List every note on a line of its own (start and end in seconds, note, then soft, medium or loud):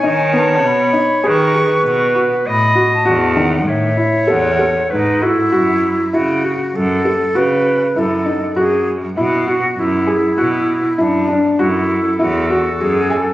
0.00 0.28 D#4 medium
0.00 1.28 C#5 loud
0.00 0.40 G#5 medium
0.04 0.66 D#3 medium
0.33 0.83 B3 medium
0.38 0.69 A5 medium
0.64 0.87 B2 medium
0.64 1.27 B5 medium
0.93 1.18 D#4 medium
1.24 1.70 D#3 medium
1.24 1.49 G#4 medium
1.24 2.48 B4 loud
1.28 1.83 C#6 loud
1.54 2.04 G#4 medium
1.85 2.31 B2 medium
1.85 2.18 C#6 medium
2.15 2.40 F#4 medium
2.46 2.91 A2 medium
2.46 3.41 D#5 loud
2.46 2.90 B5 medium
2.75 3.00 F#4 medium
2.94 3.40 A5 medium
3.05 3.68 E2 loud
3.05 3.31 F#4 medium
3.36 3.86 D#3 medium
3.36 3.71 F#5 medium
3.67 3.90 A2 medium
3.67 4.91 C#5 loud
3.67 4.32 E5 medium
3.97 4.22 E4 medium
4.27 4.75 E2 medium
4.27 4.53 A4 medium
4.27 4.91 F#5 medium
4.59 5.10 A4 medium
4.90 5.37 G#2 medium
4.90 5.24 D#4 medium
4.90 5.23 B4 medium
5.21 6.16 E4 loud
5.21 5.47 F#4 medium
5.21 5.52 A4 medium
5.52 5.99 F#2 medium
5.52 6.02 F#4 medium
6.13 6.60 C#3 medium
6.13 6.39 E4 medium
6.13 6.77 F#4 medium
6.44 6.94 F#4 medium
6.75 7.21 F#2 medium
6.75 7.38 A4 medium
7.05 7.30 A4 medium
7.35 7.82 C#3 medium
7.35 7.85 F#4 medium
7.35 8.00 B4 loud
7.96 8.42 F#2 medium
7.96 8.21 E4 medium
7.96 8.58 A4 medium
8.26 8.51 D#4 medium
8.56 9.02 F#2 medium
8.56 9.06 F#4 medium
8.56 8.89 G#4 medium
9.16 9.62 B2 medium
9.16 9.42 E4 medium
9.16 9.81 F#4 medium
9.47 9.97 F#4 medium
9.78 10.23 F#2 medium
9.78 11.02 E4 medium
10.07 10.32 G#4 medium
10.38 10.84 B2 medium
10.38 10.87 F#4 medium
10.98 11.44 F#2 medium
10.98 11.62 D4 medium
10.98 11.23 E4 medium
11.28 11.53 D4 medium
11.59 12.05 F#2 medium
11.59 12.20 E4 medium
11.59 12.08 F#4 medium
11.59 13.34 A4 medium
12.19 12.66 E2 medium
12.19 12.44 E4 medium
12.19 12.48 F#4 medium
12.50 12.83 F#4 medium
12.50 12.99 F#4 medium
12.81 13.26 F#2 medium
12.81 13.14 G#4 medium
13.10 13.34 A4 medium
13.10 13.34 G#5 medium